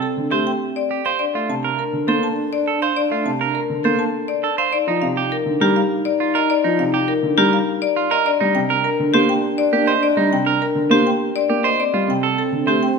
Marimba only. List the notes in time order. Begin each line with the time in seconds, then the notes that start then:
0.02 A4
0.31 G4
0.47 G5
0.76 D5
1.05 F5
1.19 D5
1.50 A5
1.79 A#4
2.08 A4
2.23 A5
2.53 D5
2.82 F5
2.96 D5
3.26 A5
3.55 A#4
3.84 A4
3.99 A5
4.28 D5
4.58 F5
4.73 D5
5.02 F5
5.32 A#4
5.62 G4
5.76 F5
6.05 D5
6.35 D#5
6.50 D5
6.79 F5
7.08 A#4
7.38 G4
7.53 F5
7.82 D5
8.11 D#5
8.26 D5
8.55 G5
8.84 A#4
9.14 G4
9.29 G5
9.58 D5
9.87 D#5
10.03 D5
10.33 G5
10.62 A#4
10.91 G4
11.07 G5
11.36 D5
11.65 D#5
11.80 D5
12.10 G5
12.38 A4
12.68 G4
12.83 G5